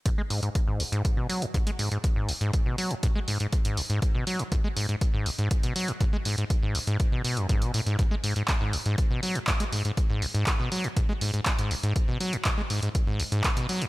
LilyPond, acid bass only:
\new Staff \with { instrumentName = "Acid bass" } { \clef bass \time 4/4 \key gis \minor \tempo 4 = 121 gis,16 gis16 gis,16 gis,16 r16 gis,16 gis,,16 gis,16 r16 b,16 fis16 fis,16 gis,16 gis16 gis,16 gis,16 | r16 gis,16 gis,,16 gis,16 r16 b,16 fis16 fis,16 gis,16 gis16 gis,16 gis,16 r16 gis,16 gis,,16 gis,16 | r16 b,16 fis16 fis,16 gis,16 gis16 gis,16 gis,16 r16 gis,16 gis,,16 gis,16 r16 b,16 fis16 fis,16 | gis,16 gis16 gis,16 gis,16 r16 gis,16 gis,,16 gis,16 r16 b,16 b,16 fis,16 gis,16 b,16 a,16 gis,16 |
r16 gis16 gis,16 gis,16 r16 gis,16 gis,,16 gis,16 r16 b,16 fis16 fis,16 gis,16 gis16 gis,16 gis,16 | r16 gis,16 gis,,16 gis,16 r16 b,16 fis16 fis,16 gis,16 gis16 gis,16 gis,16 r16 gis,16 gis,,16 gis,16 | r16 b,16 fis16 fis,16 gis,16 gis16 gis,16 gis,16 r16 gis,16 gis,,16 gis,16 r16 b,16 fis16 fis,16 | }